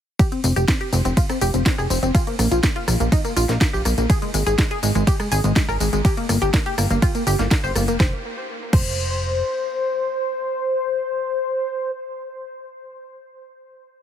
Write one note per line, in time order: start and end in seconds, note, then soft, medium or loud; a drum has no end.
0.19 0.28 G4 loud
0.19 kick loud
0.19 closed hi-hat medium
0.19 ride medium
0.19 tambourine soft
0.32 0.40 C4 medium
0.32 closed hi-hat soft
0.44 0.53 F1 medium
0.44 0.52 C4 medium
0.44 open hi-hat loud
0.44 tambourine medium
0.56 0.65 F1 medium
0.56 0.64 G4 medium
0.56 closed hi-hat medium
0.56 tambourine soft
0.68 0.77 C4 medium
0.68 kick loud
0.68 snare loud
0.68 closed hi-hat medium
0.68 ride medium
0.68 tambourine soft
0.81 0.89 G4 medium
0.81 closed hi-hat soft
0.93 1.02 F1 medium
0.93 1.01 C4 medium
0.93 open hi-hat medium
0.93 tambourine medium
1.05 1.14 F1 medium
1.05 1.13 C4 medium
1.05 closed hi-hat medium
1.05 tambourine soft
1.17 1.25 F4 medium
1.17 kick loud
1.17 closed hi-hat medium
1.17 ride medium
1.17 tambourine soft
1.29 1.38 C4 medium
1.29 cross-stick medium
1.29 closed hi-hat soft
1.29 tambourine soft
1.41 1.50 F1 medium
1.41 1.50 G4 medium
1.41 open hi-hat loud
1.41 tambourine medium
1.54 1.62 F1 medium
1.54 1.62 C4 medium
1.54 closed hi-hat medium
1.54 tambourine soft
1.66 1.74 C4 medium
1.66 kick loud
1.66 snare loud
1.66 closed hi-hat medium
1.66 ride medium
1.66 tambourine soft
1.78 1.87 F1 medium
1.78 1.86 G#4 loud
1.78 cross-stick medium
1.78 tambourine soft
1.90 1.99 F1 medium
1.90 1.99 C4 medium
1.90 open hi-hat medium
1.90 tambourine medium
2.03 2.11 F1 medium
2.03 2.11 C4 medium
2.03 closed hi-hat medium
2.03 tambourine soft
2.15 2.23 F4 medium
2.15 kick loud
2.15 closed hi-hat medium
2.15 ride medium
2.15 tambourine soft
2.27 2.35 A#3 medium
2.27 closed hi-hat soft
2.39 2.48 A#1 loud
2.39 2.47 A#3 medium
2.39 cross-stick medium
2.39 open hi-hat loud
2.39 tambourine medium
2.51 2.60 A#1 medium
2.51 2.60 F4 medium
2.51 closed hi-hat medium
2.51 tambourine soft
2.63 2.72 A#3 medium
2.63 kick loud
2.63 snare loud
2.63 closed hi-hat medium
2.63 ride medium
2.63 tambourine soft
2.76 2.84 F4 medium
2.76 closed hi-hat soft
2.88 2.97 A#1 loud
2.88 2.96 A#3 medium
2.88 cross-stick medium
2.88 open hi-hat loud
2.88 tambourine medium
3.00 3.09 A#1 medium
3.00 3.08 A#3 medium
3.00 closed hi-hat medium
3.00 tambourine soft
3.12 3.21 D#4 loud
3.12 kick loud
3.12 closed hi-hat medium
3.12 ride medium
3.12 tambourine soft
3.25 3.33 A#3 medium
3.25 closed hi-hat soft
3.25 tambourine soft
3.36 3.45 A#1 medium
3.36 3.45 F4 medium
3.36 open hi-hat loud
3.36 tambourine medium
3.49 3.57 A#1 medium
3.49 3.57 A#3 medium
3.49 snare soft
3.49 closed hi-hat medium
3.49 tambourine soft
3.61 3.69 A#3 medium
3.61 kick loud
3.61 snare loud
3.61 closed hi-hat medium
3.61 ride medium
3.61 tambourine soft
3.73 3.82 A#1 medium
3.73 3.81 G4 medium
3.73 tambourine soft
3.85 3.94 A#1 loud
3.85 3.94 A#3 medium
3.85 cross-stick medium
3.85 open hi-hat loud
3.85 tambourine medium
3.98 4.06 A#1 medium
3.98 4.06 A#3 medium
3.98 closed hi-hat medium
3.98 tambourine soft
4.10 4.18 G#4 loud
4.10 kick loud
4.10 closed hi-hat medium
4.10 ride medium
4.10 tambourine soft
4.22 4.30 G#3 medium
4.22 closed hi-hat soft
4.34 4.43 G#1 medium
4.34 4.43 G#3 medium
4.34 open hi-hat loud
4.34 tambourine medium
4.47 4.55 G#1 medium
4.47 4.55 G#4 medium
4.47 closed hi-hat medium
4.47 tambourine soft
4.58 4.67 G#3 medium
4.58 kick loud
4.58 snare loud
4.58 closed hi-hat medium
4.58 ride medium
4.58 tambourine soft
4.71 4.79 G#4 medium
4.71 closed hi-hat soft
4.83 4.92 G#1 loud
4.83 4.91 G#3 medium
4.83 open hi-hat loud
4.83 tambourine medium
4.95 5.04 G#1 medium
4.95 5.03 G#3 medium
4.95 closed hi-hat medium
4.95 tambourine soft
5.07 5.16 G4 medium
5.07 kick loud
5.07 closed hi-hat medium
5.07 ride medium
5.07 tambourine soft
5.20 5.28 G#3 medium
5.20 cross-stick medium
5.20 closed hi-hat soft
5.20 tambourine soft
5.32 5.41 G#1 loud
5.32 5.40 G#4 medium
5.32 open hi-hat loud
5.32 tambourine medium
5.44 5.53 G#1 medium
5.44 5.52 G#3 medium
5.44 closed hi-hat medium
5.44 tambourine soft
5.56 5.64 G#3 medium
5.56 kick loud
5.56 snare loud
5.56 closed hi-hat medium
5.56 ride medium
5.56 tambourine soft
5.68 5.77 G#1 medium
5.68 5.77 A#4 loud
5.68 cross-stick medium
5.68 tambourine soft
5.80 5.89 G#1 loud
5.80 5.89 G#3 medium
5.80 open hi-hat loud
5.80 tambourine medium
5.93 6.01 G#1 medium
5.93 6.01 G#3 medium
5.93 closed hi-hat medium
5.93 tambourine soft
6.05 6.13 G4 loud
6.05 kick loud
6.05 closed hi-hat medium
6.05 ride medium
6.05 tambourine soft
6.17 6.25 A#3 medium
6.17 closed hi-hat soft
6.29 6.38 G1 medium
6.29 6.38 A#3 medium
6.29 cross-stick medium
6.29 open hi-hat loud
6.29 tambourine medium
6.42 6.50 G1 medium
6.42 6.50 G4 medium
6.42 closed hi-hat medium
6.42 tambourine soft
6.54 6.62 A#3 medium
6.54 kick loud
6.54 snare loud
6.54 closed hi-hat medium
6.54 ride medium
6.54 tambourine soft
6.66 6.74 G4 medium
6.66 closed hi-hat soft
6.78 6.87 G1 medium
6.78 6.86 A#3 medium
6.78 cross-stick medium
6.78 open hi-hat loud
6.78 tambourine medium
6.90 6.99 G1 medium
6.90 6.99 A#3 medium
6.90 closed hi-hat soft
6.90 tambourine soft
7.02 7.11 F4 medium
7.02 kick loud
7.02 closed hi-hat medium
7.02 ride medium
7.02 tambourine soft
7.15 7.23 A#3 medium
7.15 closed hi-hat soft
7.15 tambourine soft
7.27 7.36 G1 loud
7.27 7.35 G4 medium
7.27 open hi-hat loud
7.27 tambourine medium
7.39 7.48 G1 medium
7.39 7.47 A#3 medium
7.39 snare soft
7.39 closed hi-hat soft
7.39 tambourine soft
7.51 7.60 A#3 medium
7.51 kick loud
7.51 snare loud
7.51 closed hi-hat medium
7.51 ride medium
7.51 tambourine soft
7.64 7.72 G1 medium
7.64 7.72 C5 loud
7.64 tambourine soft
7.75 7.89 G1 loud
7.75 7.84 A#3 medium
7.75 cross-stick medium
7.75 open hi-hat medium
7.75 tambourine medium
7.88 7.96 F1 medium
7.88 7.96 A#3 medium
7.88 closed hi-hat medium
7.88 tambourine soft
8.00 8.14 F1 loud
8.00 8.14 C5 medium
8.00 kick loud
8.00 snare medium
8.73 9.42 F1 loud
8.73 11.91 C5 medium
8.73 kick loud
8.73 crash medium